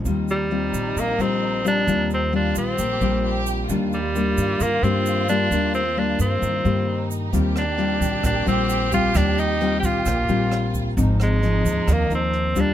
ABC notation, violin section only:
X:1
M:4/4
L:1/8
Q:1/4=132
K:Eb
V:1 name="Violin section"
E8- | E2 F2 G2 G2 | F8- | F6 E2 |
G8- | G6 F2 | E8 |]